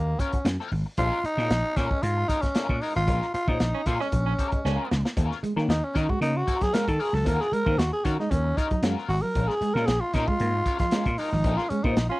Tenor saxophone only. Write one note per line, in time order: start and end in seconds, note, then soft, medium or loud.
0.00 0.21 A#3 medium
0.20 0.46 C#4 medium
0.98 1.26 F4 loud
1.25 1.78 D#4 loud
1.76 2.04 C#4 medium
2.02 2.29 F4 loud
2.28 2.43 D#4 loud
2.41 2.83 C#4 medium
2.82 2.95 D#4 medium
2.96 3.31 F4 loud
3.34 3.49 F4 loud
3.48 3.88 D#4 medium
3.86 4.03 F4 loud
4.01 4.79 C#4 medium
5.70 5.86 D#4 loud
5.84 5.98 C#4 medium
5.97 6.11 D#4 medium
6.09 6.21 F#4 medium
6.21 6.38 D#4 loud
6.37 6.64 F#4 medium
6.62 6.75 G#4 loud
6.74 6.90 A#4 loud
6.88 7.03 A4 medium
7.01 7.16 G#4 loud
7.15 7.29 A4 medium
7.28 7.43 A#4 loud
7.41 7.55 G#4 loud
7.54 7.80 A#4 loud
7.79 7.92 F#4 loud
7.93 8.06 G#4 medium
8.04 8.18 F#4 medium
8.19 8.32 D#4 medium
8.30 8.59 C#4 medium
8.57 8.83 D#4 medium
9.09 9.23 F#4 loud
9.22 9.49 A#4 medium
9.48 9.76 G#4 loud
9.74 9.88 A#4 loud
9.86 10.02 G#4 loud
10.00 10.15 F4 loud
10.14 10.28 D#4 loud
10.27 10.79 F4 loud
10.79 11.19 F4 medium
11.18 11.59 D#4 loud
11.57 11.71 F4 medium
11.69 11.85 C#4 medium
11.83 12.08 D#4 medium
12.09 12.20 F4 medium